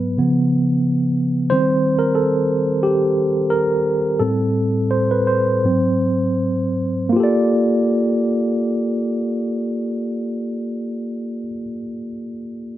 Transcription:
0.00 0.19 G#2 medium
0.00 0.20 F#3 medium
0.00 0.19 B3 medium
0.00 0.20 B4 medium
0.18 0.63 C#3 medium
0.18 0.64 F3 medium
0.18 0.63 B3 medium
1.50 1.96 D#3 medium
1.50 1.96 G3 medium
1.50 1.97 C4 medium
1.50 2.03 C5 loud
1.99 2.14 A#4 loud
2.15 2.85 A4 loud
2.83 3.48 G4 loud
3.50 4.22 A#4 loud
4.20 4.69 A2 medium
4.20 4.69 G3 medium
4.20 4.69 C4 medium
4.20 4.93 A4 loud
4.91 5.11 C5 loud
5.11 5.19 B4 medium
5.27 6.72 C5 medium
5.64 7.12 G#2 medium
5.64 7.12 F#3 medium
5.64 7.12 C4 medium
7.09 11.42 A#3 medium
7.09 11.45 F4 medium
7.16 11.49 G4 medium
7.16 11.53 A4 medium
7.24 11.56 D5 loud

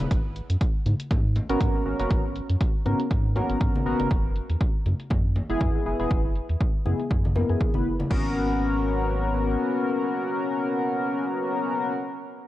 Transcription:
0.11 0.41 G#1 medium
0.11 kick loud
0.11 closed hi-hat medium
0.36 closed hi-hat soft
0.50 0.56 F#2 medium
0.50 closed hi-hat soft
0.61 kick medium
0.61 closed hi-hat medium
0.86 0.94 G#2 medium
0.86 closed hi-hat soft
0.86 high conga medium
1.00 closed hi-hat soft
1.11 1.41 G#2 medium
1.11 kick loud
1.11 closed hi-hat medium
1.11 low conga medium
1.36 closed hi-hat soft
1.36 low conga medium
1.49 1.56 G#1 medium
1.49 1.83 B3 medium
1.49 1.83 C#4 medium
1.49 1.83 F#4 medium
1.49 1.83 A#4 loud
1.49 closed hi-hat soft
1.61 1.69 G#2 medium
1.61 kick loud
1.61 closed hi-hat medium
1.85 1.94 G#1 medium
1.85 1.97 B3 medium
1.85 1.97 C#4 medium
1.85 1.98 F#4 medium
1.85 1.98 A#4 medium
1.99 2.06 F#1 loud
1.99 2.20 B3 loud
1.99 2.20 C#4 medium
1.99 2.20 F#4 medium
1.99 2.20 A#4 loud
1.99 closed hi-hat soft
2.11 2.41 G#1 medium
2.11 kick loud
2.11 closed hi-hat medium
2.36 closed hi-hat soft
2.50 2.56 F#2 medium
2.50 closed hi-hat soft
2.61 kick medium
2.61 closed hi-hat medium
2.85 2.94 G#2 medium
2.85 3.00 B3 medium
2.85 3.00 C#4 medium
2.85 3.00 F#4 medium
2.85 3.00 A#4 medium
2.85 closed hi-hat soft
2.85 high conga medium
3.00 closed hi-hat soft
3.11 3.41 G#2 medium
3.11 kick loud
3.11 closed hi-hat medium
3.36 3.83 B3 medium
3.36 3.83 C#4 medium
3.36 3.83 F#4 medium
3.36 3.83 A#4 loud
3.36 closed hi-hat soft
3.36 low conga medium
3.50 3.56 G#1 medium
3.50 closed hi-hat soft
3.61 3.69 G#2 medium
3.61 kick loud
3.61 closed hi-hat medium
3.76 high conga medium
3.86 3.94 G#1 medium
3.86 4.07 B3 medium
3.86 4.07 C#4 medium
3.86 4.07 F#4 medium
3.86 4.07 A#4 loud
3.99 4.06 F#1 medium
3.99 closed hi-hat soft
3.99 high conga medium
4.11 4.41 F#1 loud
4.11 kick loud
4.11 closed hi-hat medium
4.36 closed hi-hat soft
4.50 4.56 E2 medium
4.50 closed hi-hat soft
4.61 kick medium
4.61 closed hi-hat medium
4.86 4.94 F#2 medium
4.86 closed hi-hat soft
4.86 high conga medium
5.00 closed hi-hat medium
5.10 5.41 F#2 medium
5.10 kick loud
5.10 closed hi-hat medium
5.10 low conga medium
5.36 closed hi-hat soft
5.36 low conga medium
5.49 5.56 F#1 medium
5.49 5.83 B3 medium
5.49 5.83 E4 medium
5.49 5.83 G#4 medium
5.49 closed hi-hat soft
5.61 5.69 F#2 medium
5.61 kick loud
5.61 closed hi-hat medium
5.85 5.94 F#1 medium
5.85 5.97 B3 medium
5.85 5.97 E4 medium
5.85 5.98 G#4 medium
5.99 6.06 E1 medium
5.99 6.20 B3 medium
5.99 6.20 E4 medium
5.99 6.20 G#4 loud
5.99 closed hi-hat soft
6.11 6.41 F#1 medium
6.11 kick loud
6.11 closed hi-hat medium
6.36 closed hi-hat soft
6.50 6.56 E2 medium
6.50 closed hi-hat soft
6.61 kick medium
6.61 closed hi-hat medium
6.85 6.94 F#2 medium
6.85 7.00 B3 medium
6.85 7.00 E4 medium
6.85 7.00 G#4 medium
6.85 closed hi-hat soft
6.85 high conga medium
6.99 closed hi-hat medium
7.11 7.35 F#2 medium
7.11 kick loud
7.11 closed hi-hat medium
7.25 high conga medium
7.35 7.44 F#2 medium
7.35 7.47 B3 medium
7.35 7.47 E4 medium
7.35 7.48 A#4 medium
7.35 closed hi-hat soft
7.35 low conga medium
7.49 7.56 F#2 loud
7.49 7.70 B3 medium
7.49 7.70 E4 medium
7.49 7.70 G#4 medium
7.49 closed hi-hat soft
7.61 kick loud
7.61 closed hi-hat medium
7.74 8.04 F#1 medium
7.74 7.86 B3 loud
7.74 7.86 E4 medium
7.74 7.86 B4 loud
7.74 high conga medium
7.99 closed hi-hat soft
7.99 high conga medium
8.10 9.57 G#1 medium
8.10 11.91 B3 medium
8.10 11.92 C#4 medium
8.10 11.92 F#4 medium
8.10 11.93 A#4 medium
8.10 kick loud
8.10 crash medium

